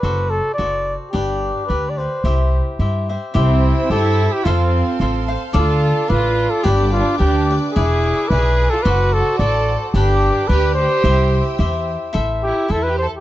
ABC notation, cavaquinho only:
X:1
M:2/4
L:1/8
Q:"Swing" 1/4=109
K:C
V:1 name="Cavaquinho"
[^FAcd]2 [FAcd]2 | [DGBd]2 [DGBd] [GBd] | [EGce]2 [EGce] [Gce] | [EGce]2 [EGce]2 |
[FAcf]2 [FAcf] [Acf] | [DAdf]2 [DAdf]2 | [DGBd]2 [DGBd] [GBd] | [E^GBd]2 [EGBd]2 |
[^FAcd]2 [FAcd]2 | [DGBd]2 [DGBd]2 | [EGce]2 [EGce]2 | [K:Am] [EAce]2 [EAce]2 |]